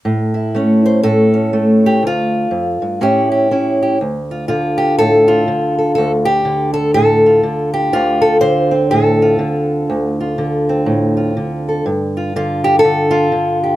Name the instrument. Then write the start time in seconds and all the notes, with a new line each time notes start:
steel-string acoustic guitar
0.05 A2
0.34 E4
0.55 A3 C#4
0.86 C5
1.03 A2 A4
1.34 C#4
1.53 A3
1.86 G4
2.03 D2
2.07 F4
2.51 F2
2.82 G2
3.01 A2 C#4 E4 G4
3.32 G4
3.51 C#4 E4
3.83 G4
4.01 D2
4.31 F4
4.48 D3 F4
4.78 G4
4.99 A2 A4
5.28 F4
5.48 D3
5.79 A4
5.95 D2 A4
6.25 G4
6.45 D3
6.74 A4
6.94 A2 A4
7.26 F4
7.43 D3
7.74 G4
7.93 D2 F4
8.22 A4
8.41 D3 C5
8.71 C4
8.91 A2 A4
9.22 F4
9.39 D3
9.90 D2
10.20 F4
10.38 D3
10.69 C4
10.86 A2
11.17 F4
11.37 D3
11.69 A4
11.86 G2
12.17 F4
12.36 D3 F4
12.64 G4
12.79 A4
12.84 D3
13.11 F4
13.32 D3
13.64 G4